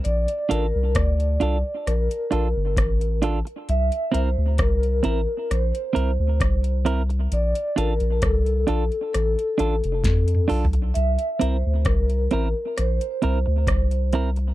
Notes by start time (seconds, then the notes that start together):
0.04 A#1 D5, closed hi-hat
0.28 closed hi-hat
0.49 A1 D4 F4 A4 A#4, closed hi-hat
0.75 C2
0.95 D2 D5, kick, cross-stick, closed hi-hat
1.20 closed hi-hat
1.40 C2 D4 F4 A4, closed hi-hat
1.87 A#1 A#4, cross-stick, closed hi-hat
2.11 closed hi-hat
2.31 A#1 D4 F4 A4, closed hi-hat
2.57 G1
2.77 A1, kick, cross-stick, closed hi-hat
3.01 closed hi-hat
3.22 D4 F4 A4, closed hi-hat
3.45 muted clean electric guitar stroke, closed hi-hat
3.69 C2 E5, closed hi-hat
3.92 closed hi-hat
4.12 C2 C4 E4 A#4 C5, closed hi-hat
4.38 D2
4.58 C2 A#4, kick, cross-stick, closed hi-hat
4.83 closed hi-hat
5.03 A1 C4 E4 A#4, closed hi-hat
5.51 A#1 C5, cross-stick, closed hi-hat
5.75 closed hi-hat
5.93 C2 C4 E4 A#4, closed hi-hat
6.19 D2
6.40 C2, kick, cross-stick, closed hi-hat
6.64 closed hi-hat
6.85 C4 E4 A#4, closed hi-hat
7.09 muted clean electric guitar stroke, closed hi-hat
7.32 A#1 D5, closed hi-hat
7.55 closed hi-hat
7.76 A1 D4 F4 A4 A#4, closed hi-hat
8.00 A#1, closed hi-hat
8.22 C2 A4, kick, cross-stick, closed hi-hat
8.46 closed hi-hat
8.67 A#1 D4 F4 A4, closed hi-hat
8.92 closed hi-hat
9.13 A1 A4, cross-stick, closed hi-hat
9.39 closed hi-hat
9.58 A1 D4 F4 A4, closed hi-hat
9.84 F1, closed hi-hat
10.04 F2, kick, snare, closed hi-hat
10.28 closed hi-hat
10.35 mid tom
10.48 B1 D4 F4 A4, open hi-hat
10.65 floor tom
10.73 muted clean electric guitar stroke, closed hi-hat
10.94 C2 E5, closed hi-hat
11.19 closed hi-hat
11.40 C2 C4 E4 A#4 C5, closed hi-hat
11.66 D2
11.85 C2 A#4, kick, cross-stick, closed hi-hat
12.10 closed hi-hat
12.31 A1 C4 E4 A#4, closed hi-hat
12.77 A#1 C5, cross-stick, closed hi-hat
13.01 closed hi-hat
13.22 C2 C4 E4 A#4, closed hi-hat
13.46 D2, muted clean electric guitar stroke
13.67 C2, kick, cross-stick, closed hi-hat
13.91 closed hi-hat
14.13 C4 E4 A#4, closed hi-hat
14.36 muted clean electric guitar stroke, closed hi-hat